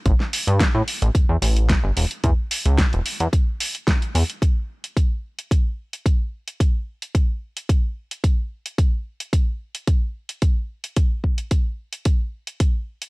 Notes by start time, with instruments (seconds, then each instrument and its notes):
0.06 analog synth bass A1, kick, closed hi-hat
0.20 snare
0.33 open hi-hat
0.47 analog synth bass G2, closed hi-hat
0.60 kick, snare, closed hi-hat
0.75 analog synth bass A2
0.88 open hi-hat
1.02 analog synth bass A1, closed hi-hat
1.15 analog synth bass E2, kick, closed hi-hat
1.29 analog synth bass E2
1.42 analog synth bass A1, open hi-hat
1.56 closed hi-hat
1.69 kick, snare, closed hi-hat
1.84 analog synth bass G1
1.97 analog synth bass E1, open hi-hat
2.11 closed hi-hat
2.24 analog synth bass E2, kick, closed hi-hat
2.51 open hi-hat
2.66 analog synth bass C#2, closed hi-hat
2.78 kick, snare, closed hi-hat
2.93 analog synth bass E1, closed hi-hat
3.06 open hi-hat
3.20 analog synth bass E2, closed hi-hat
3.33 kick, closed hi-hat
3.60 open hi-hat
3.75 closed hi-hat
3.87 kick, snare, closed hi-hat
4.02 closed hi-hat
4.15 analog synth bass E2, open hi-hat
4.30 closed hi-hat
4.42 kick, closed hi-hat
4.84 closed hi-hat
4.97 kick, closed hi-hat
5.39 closed hi-hat
5.51 kick, closed hi-hat
5.93 closed hi-hat
6.06 kick, closed hi-hat
6.48 closed hi-hat
6.60 kick, closed hi-hat
7.02 closed hi-hat
7.15 kick, closed hi-hat
7.57 closed hi-hat
7.69 kick, closed hi-hat
8.11 closed hi-hat
8.24 kick, closed hi-hat
8.66 closed hi-hat
8.78 kick, closed hi-hat
9.20 closed hi-hat
9.33 kick, closed hi-hat
9.75 closed hi-hat
9.87 kick, closed hi-hat
10.29 closed hi-hat
10.42 kick, closed hi-hat
10.84 closed hi-hat
10.96 kick, closed hi-hat
11.24 kick
11.38 closed hi-hat
11.51 kick, closed hi-hat
11.93 closed hi-hat
12.05 kick, closed hi-hat
12.47 closed hi-hat
12.60 kick, closed hi-hat
13.02 closed hi-hat